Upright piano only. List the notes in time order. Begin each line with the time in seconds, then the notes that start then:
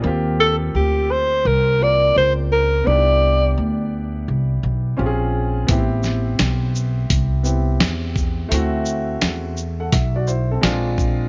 0.02 A#3 C4 F4
0.07 G4
1.79 A#3 C4 F4 A#4
2.84 B3 D4 D#4
2.90 G4
2.94 E4
4.97 C4 C#4 F4 G4
5.06 G#4
5.67 B3 C4 E4
5.72 G4
7.43 B3 C4 E4 G4
8.49 A3 C4 E4
8.54 F#4
9.80 A4 F#5
9.93 E5
10.16 F#4 D5
10.27 E4 C5
10.51 C4 A4
10.61 G#3 C4 D4 F4